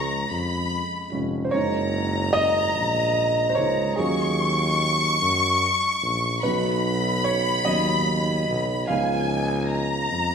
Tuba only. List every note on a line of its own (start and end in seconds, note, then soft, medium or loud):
0.00 0.26 C#2 loud
0.30 0.82 F2 medium
1.12 1.50 F1 medium
1.53 2.71 F#1 loud
2.76 3.53 A#1 loud
3.57 3.96 C#2 medium
3.98 5.17 D#2 loud
5.21 5.72 F#2 loud
6.03 6.41 A#1 medium
6.44 7.62 B1 loud
7.66 8.44 D#2 medium
8.48 8.86 B1 loud
8.89 10.08 C#2 loud
10.12 10.35 F2 medium